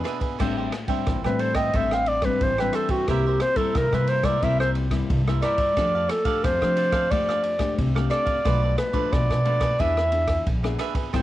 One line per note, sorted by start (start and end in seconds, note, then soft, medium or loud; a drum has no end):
0.00 0.37 B2 medium
0.00 0.35 B3 medium
0.00 0.36 D4 medium
0.00 0.20 D4 medium
0.00 0.36 G#4 medium
0.04 0.20 G#4 medium
0.04 0.19 B4 medium
0.04 0.18 E5 medium
0.04 cross-stick medium
0.04 ride soft
0.20 0.38 G#4 soft
0.20 0.37 B4 soft
0.20 0.37 E5 soft
0.20 kick medium
0.20 ride soft
0.39 0.68 A1 medium
0.39 1.03 A2 medium
0.39 0.71 G3 medium
0.39 0.72 C4 medium
0.39 0.72 D4 medium
0.39 0.55 A4 medium
0.39 0.55 C5 medium
0.39 0.55 E5 medium
0.39 0.55 G5 medium
0.39 kick medium
0.39 cross-stick medium
0.39 crash medium
0.57 0.72 C5 soft
0.57 0.72 E5 soft
0.57 0.72 G5 soft
0.72 muted cavaquinho stroke soft
0.72 cross-stick medium
0.72 ride soft
0.88 1.17 G3 medium
0.88 1.17 C4 medium
0.88 1.18 D4 medium
0.88 1.22 C5 medium
0.88 1.22 E5 medium
0.88 1.22 G5 medium
0.88 kick medium
0.88 ride soft
1.07 1.21 A1 medium
1.07 1.71 E3 medium
1.07 kick medium
1.07 cross-stick medium
1.07 ride soft
1.24 1.67 A2 medium
1.24 1.70 G3 medium
1.24 1.70 C4 medium
1.24 1.70 D4 medium
1.24 1.41 B4 medium
1.24 1.39 C5 soft
1.24 1.40 E5 soft
1.24 1.39 G5 soft
1.24 cross-stick medium
1.39 1.56 A4 soft
1.39 1.57 C5 medium
1.39 1.56 C5 soft
1.39 1.56 E5 soft
1.39 1.55 G5 medium
1.39 ride soft
1.55 1.73 C5 soft
1.55 1.78 D#5 medium
1.55 1.73 E5 medium
1.55 1.72 G5 medium
1.55 kick medium
1.55 cross-stick medium
1.55 ride soft
1.74 2.31 A1 loud
1.74 2.39 A2 medium
1.74 2.20 G3 medium
1.74 2.20 C4 medium
1.74 2.20 D4 medium
1.74 1.90 A4 medium
1.74 1.90 C5 medium
1.74 1.90 E5 medium
1.74 1.94 E5 medium
1.74 1.90 G5 medium
1.74 kick medium
1.74 ride soft
1.91 2.06 C5 soft
1.91 2.06 E5 soft
1.91 2.09 F5 medium
1.91 2.07 G5 medium
1.91 cross-stick medium
2.06 2.26 D5 medium
2.06 muted cavaquinho stroke soft
2.06 ride soft
2.22 2.52 G3 medium
2.22 2.53 C4 medium
2.22 2.53 D4 medium
2.22 2.44 B4 medium
2.22 kick medium
2.22 cross-stick medium
2.22 ride soft
2.41 2.70 A1 medium
2.41 3.06 E3 medium
2.41 2.61 C5 medium
2.41 kick medium
2.41 ride soft
2.58 3.04 G3 medium
2.58 3.04 C4 medium
2.58 3.04 D4 medium
2.58 2.77 B4 medium
2.58 2.74 C5 soft
2.58 2.74 E5 soft
2.58 2.74 G5 medium
2.58 cross-stick medium
2.73 2.90 A4 medium
2.73 2.92 A4 medium
2.73 2.90 C5 medium
2.73 2.90 E5 medium
2.73 2.89 G5 medium
2.73 cross-stick medium
2.73 ride soft
2.89 3.10 F#4 medium
2.89 3.07 C5 soft
2.89 3.07 E5 soft
2.89 3.06 G5 soft
2.89 kick medium
2.89 ride soft
3.08 3.37 C2 medium
3.08 3.73 C3 medium
3.08 3.40 G3 medium
3.08 3.40 A#3 medium
3.08 3.24 E4 medium
3.08 3.41 E4 medium
3.08 3.43 G4 medium
3.08 3.24 A#4 medium
3.08 3.25 C5 medium
3.08 3.25 E5 medium
3.08 kick medium
3.08 cross-stick medium
3.08 ride soft
3.26 3.41 A#4 soft
3.26 3.41 C5 soft
3.26 3.41 E5 medium
3.40 3.58 C5 medium
3.40 muted cavaquinho stroke soft
3.40 cross-stick medium
3.40 ride soft
3.56 3.86 G3 medium
3.56 3.86 A#3 medium
3.56 3.86 E4 medium
3.56 3.79 A4 medium
3.56 3.91 A#4 medium
3.56 3.91 C5 medium
3.56 3.90 E5 medium
3.56 kick medium
3.56 ride soft
3.75 3.90 C2 medium
3.75 4.40 G2 medium
3.75 3.96 A#4 medium
3.75 kick medium
3.75 cross-stick medium
3.75 ride soft
3.92 4.35 C3 medium
3.92 4.21 G3 medium
3.92 4.21 A#3 medium
3.92 4.21 E4 medium
3.92 4.08 A#4 soft
3.92 4.10 B4 medium
3.92 4.09 C5 soft
3.92 4.09 E5 soft
3.92 cross-stick medium
4.08 4.24 E4 soft
4.08 4.25 A#4 soft
4.08 4.26 C5 medium
4.08 4.24 C5 soft
4.08 4.23 E5 medium
4.08 ride soft
4.23 4.36 G3 medium
4.23 4.36 A#3 medium
4.23 4.37 E4 medium
4.23 4.41 A#4 soft
4.23 4.41 C5 medium
4.23 4.45 D5 medium
4.23 4.41 E5 medium
4.23 kick medium
4.23 cross-stick medium
4.23 ride soft
4.42 5.00 C2 loud
4.42 5.06 C3 medium
4.42 4.87 G3 medium
4.42 4.88 A#3 medium
4.42 4.88 E4 medium
4.42 4.59 E4 medium
4.42 4.59 A#4 medium
4.42 4.59 C5 medium
4.42 4.59 E5 medium
4.42 kick medium
4.42 ride soft
4.60 4.75 A#4 soft
4.60 4.70 C5 medium
4.60 4.76 C5 soft
4.60 4.76 E5 soft
4.60 cross-stick medium
4.75 muted cavaquinho stroke soft
4.75 ride soft
4.91 5.20 G3 medium
4.91 5.21 A#3 medium
4.91 5.21 E4 medium
4.91 kick medium
4.91 cross-stick medium
4.91 ride soft
5.10 5.38 C2 loud
5.10 5.74 G2 medium
5.10 kick medium
5.10 ride medium
5.28 5.72 G3 medium
5.28 5.73 A#3 medium
5.28 5.73 E4 medium
5.28 5.41 A#4 soft
5.28 5.42 C5 soft
5.28 5.42 E5 soft
5.28 cross-stick medium
5.42 5.58 E4 medium
5.42 5.58 A#4 medium
5.42 5.58 C5 medium
5.42 6.12 D5 medium
5.42 5.57 E5 medium
5.42 cross-stick medium
5.42 ride soft
5.58 5.76 A#4 soft
5.58 5.75 C5 soft
5.58 5.75 E5 medium
5.58 kick medium
5.58 ride medium
5.77 6.06 F2 medium
5.77 6.41 F3 medium
5.77 6.09 A3 medium
5.77 5.93 D4 medium
5.77 6.09 D4 medium
5.77 6.09 G4 medium
5.77 5.93 A4 medium
5.77 5.93 D5 medium
5.77 5.93 F5 medium
5.77 kick medium
5.77 cross-stick medium
5.77 ride soft
5.95 6.08 A4 soft
5.95 6.08 D5 soft
5.95 6.09 F5 soft
6.09 6.46 A4 medium
6.09 muted cavaquinho stroke soft
6.09 cross-stick medium
6.09 ride medium
6.25 6.55 A3 medium
6.25 6.55 D4 medium
6.25 6.55 G4 medium
6.25 6.59 A4 medium
6.25 6.59 D5 medium
6.25 6.58 F5 medium
6.25 kick medium
6.25 ride medium
6.44 6.59 F2 medium
6.44 7.08 C3 medium
6.44 7.12 C5 medium
6.44 kick medium
6.44 cross-stick medium
6.44 ride medium
6.61 7.04 F3 medium
6.61 7.07 A3 medium
6.61 7.07 D4 medium
6.61 7.07 G4 medium
6.61 6.76 A4 soft
6.61 6.76 D5 soft
6.61 6.77 F5 soft
6.61 cross-stick medium
6.76 6.92 D4 medium
6.76 6.93 A4 soft
6.76 6.92 D5 medium
6.76 6.91 F5 medium
6.76 ride medium
6.92 7.10 A4 medium
6.92 7.09 D5 medium
6.92 7.09 F5 medium
6.92 kick medium
6.92 cross-stick medium
6.92 ride soft
7.11 7.68 F2 medium
7.11 7.75 F3 medium
7.11 7.56 A3 medium
7.11 7.26 D4 medium
7.11 7.56 D4 medium
7.11 7.56 G4 medium
7.11 7.27 A4 medium
7.11 7.78 D5 medium
7.11 7.27 D5 medium
7.11 7.27 F5 medium
7.11 kick medium
7.11 ride medium
7.28 7.42 A4 soft
7.28 7.43 D5 soft
7.28 7.42 F5 soft
7.28 cross-stick medium
7.43 muted cavaquinho stroke soft
7.43 ride soft
7.59 7.89 A3 medium
7.59 7.89 D4 medium
7.59 7.89 G4 medium
7.59 kick medium
7.59 cross-stick medium
7.59 ride soft
7.78 8.07 C2 medium
7.78 8.42 C3 medium
7.78 kick medium
7.78 ride medium
7.95 8.40 A3 medium
7.95 8.40 D4 medium
7.95 8.40 G4 medium
7.95 8.09 A4 soft
7.95 8.10 D5 soft
7.95 8.10 F5 soft
7.95 cross-stick medium
8.10 8.26 D4 medium
8.10 8.26 A4 medium
8.10 8.25 D5 medium
8.10 8.74 D5 medium
8.10 8.24 F5 medium
8.10 cross-stick medium
8.10 ride soft
8.25 8.43 A4 soft
8.25 8.43 D5 soft
8.25 8.42 F5 soft
8.25 kick medium
8.25 ride soft
8.45 8.74 B1 medium
8.45 9.09 B2 medium
8.45 8.90 F3 medium
8.45 8.90 A3 medium
8.45 8.90 D4 medium
8.45 8.60 F4 medium
8.45 8.61 A4 medium
8.45 8.61 B4 medium
8.45 8.61 D5 medium
8.45 kick medium
8.45 cross-stick medium
8.45 ride soft
8.62 8.76 A4 soft
8.62 8.77 B4 soft
8.62 8.77 D5 soft
8.77 9.14 B4 medium
8.77 muted cavaquinho stroke soft
8.77 cross-stick medium
8.77 ride soft
8.93 9.39 F3 medium
8.93 9.39 A3 medium
8.93 9.39 D4 medium
8.93 9.27 A4 medium
8.93 9.27 B4 medium
8.93 9.27 D5 medium
8.93 kick medium
8.93 ride soft
9.11 9.27 B1 medium
9.11 9.76 B2 medium
9.11 9.81 D5 medium
9.11 kick medium
9.11 cross-stick medium
9.11 ride soft
9.30 9.72 B2 medium
9.30 9.44 A4 soft
9.30 9.45 B4 soft
9.30 9.45 D5 soft
9.30 cross-stick medium
9.45 9.74 F3 medium
9.45 9.74 A3 medium
9.45 9.74 D4 medium
9.45 9.61 F4 soft
9.45 9.60 A4 medium
9.45 9.60 B4 soft
9.45 9.59 D5 medium
9.45 ride soft
9.60 9.78 A4 medium
9.60 9.77 B4 medium
9.60 9.77 D5 medium
9.60 kick medium
9.60 cross-stick medium
9.60 ride soft
9.79 10.37 E2 medium
9.79 10.43 E3 medium
9.79 9.99 B3 medium
9.79 9.94 D4 medium
9.79 9.99 D4 medium
9.79 9.95 G#4 medium
9.79 10.00 G#4 medium
9.79 9.95 B4 medium
9.79 10.47 E5 medium
9.79 9.95 E5 medium
9.79 kick medium
9.79 ride soft
9.97 10.10 G#4 soft
9.97 10.11 B4 soft
9.97 10.11 E5 soft
9.97 cross-stick medium
10.12 10.57 B3 soft
10.12 10.58 D4 medium
10.12 10.58 G#4 medium
10.12 muted cavaquinho stroke soft
10.12 ride soft
10.28 kick medium
10.28 cross-stick medium
10.28 ride soft
10.47 10.75 A#1 loud
10.47 kick medium
10.47 ride medium
10.63 11.08 B3 medium
10.63 11.08 D4 medium
10.63 11.09 G#4 medium
10.63 10.78 G#4 soft
10.63 10.78 B4 soft
10.63 10.79 E5 soft
10.63 cross-stick medium
10.79 10.95 D4 medium
10.79 10.95 G#4 medium
10.79 10.94 B4 medium
10.79 10.94 E5 medium
10.79 cross-stick medium
10.79 ride soft
10.95 11.12 G#4 soft
10.95 11.11 B4 soft
10.95 11.11 E5 soft
10.95 kick medium
10.95 ride medium
11.13 11.22 A1 medium
11.13 11.22 A2 medium
11.13 11.22 G3 medium
11.13 11.22 C4 medium
11.13 11.22 E4 medium
11.13 11.22 A4 medium
11.13 11.22 C5 medium
11.13 11.22 E5 medium
11.13 11.22 G5 medium
11.13 kick medium
11.13 cross-stick medium
11.13 ride soft